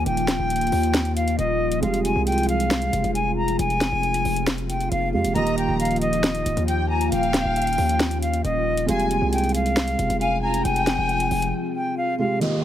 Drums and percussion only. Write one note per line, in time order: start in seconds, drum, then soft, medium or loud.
0.06 closed hi-hat medium
0.17 closed hi-hat medium
0.28 snare loud
0.28 closed hi-hat medium
0.50 closed hi-hat medium
0.56 closed hi-hat medium
0.61 closed hi-hat soft
0.67 closed hi-hat soft
0.72 open hi-hat medium
0.83 closed hi-hat medium
0.94 snare loud
0.94 closed hi-hat medium
1.05 closed hi-hat medium
1.17 closed hi-hat medium
1.28 closed hi-hat medium
1.39 closed hi-hat medium
1.72 closed hi-hat medium
1.83 closed hi-hat medium
1.94 closed hi-hat medium
2.05 closed hi-hat medium
2.27 closed hi-hat medium
2.32 closed hi-hat medium
2.38 closed hi-hat soft
2.43 closed hi-hat soft
2.49 closed hi-hat medium
2.60 closed hi-hat medium
2.71 snare loud
2.71 closed hi-hat medium
2.82 closed hi-hat medium
2.93 closed hi-hat medium
3.04 closed hi-hat medium
3.15 closed hi-hat medium
3.48 closed hi-hat medium
3.59 closed hi-hat medium
3.70 closed hi-hat medium
3.81 snare medium
3.81 closed hi-hat medium
4.03 closed hi-hat soft
4.14 closed hi-hat medium
4.25 open hi-hat medium
4.36 closed hi-hat medium
4.47 snare loud
4.47 closed hi-hat medium
4.58 closed hi-hat medium
4.70 closed hi-hat medium
4.81 closed hi-hat medium
4.92 closed hi-hat medium
5.25 closed hi-hat medium
5.36 closed hi-hat medium
5.47 closed hi-hat medium
5.58 closed hi-hat medium
5.80 closed hi-hat medium
5.85 closed hi-hat medium
5.91 closed hi-hat soft
5.96 closed hi-hat soft
6.02 closed hi-hat medium
6.13 closed hi-hat medium
6.24 snare loud
6.24 closed hi-hat medium
6.35 closed hi-hat medium
6.46 closed hi-hat medium
6.57 closed hi-hat medium
6.68 closed hi-hat medium
7.01 closed hi-hat medium
7.12 closed hi-hat medium
7.23 closed hi-hat medium
7.34 snare medium
7.34 closed hi-hat medium
7.56 closed hi-hat medium
7.62 closed hi-hat medium
7.67 closed hi-hat soft
7.73 closed hi-hat soft
7.78 open hi-hat medium
7.89 closed hi-hat medium
8.00 snare loud
8.00 closed hi-hat medium
8.11 closed hi-hat medium
8.22 closed hi-hat medium
8.34 closed hi-hat medium
8.45 closed hi-hat medium
8.77 closed hi-hat medium
8.89 closed hi-hat medium
9.00 closed hi-hat medium
9.11 closed hi-hat medium
9.33 closed hi-hat medium
9.38 closed hi-hat medium
9.44 closed hi-hat soft
9.49 closed hi-hat soft
9.55 closed hi-hat medium
9.66 closed hi-hat medium
9.77 snare loud
9.77 closed hi-hat medium
9.88 closed hi-hat medium
9.99 closed hi-hat medium
10.10 closed hi-hat medium
10.21 closed hi-hat medium
10.54 closed hi-hat medium
10.65 closed hi-hat medium
10.76 closed hi-hat medium
10.87 snare loud
10.87 closed hi-hat medium
11.09 closed hi-hat soft
11.20 closed hi-hat medium
11.31 open hi-hat medium
11.42 closed hi-hat medium
12.41 closed hi-hat medium